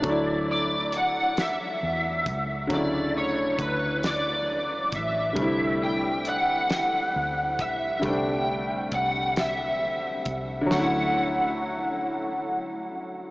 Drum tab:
HH |x-xx-x|x-xx-x|x-xx-x|x-xx-x|
SD |---o--|---o--|---o--|---o--|
BD |o----o|o-o--o|o----o|o-o--o|

HH |------|
SD |o-----|
BD |------|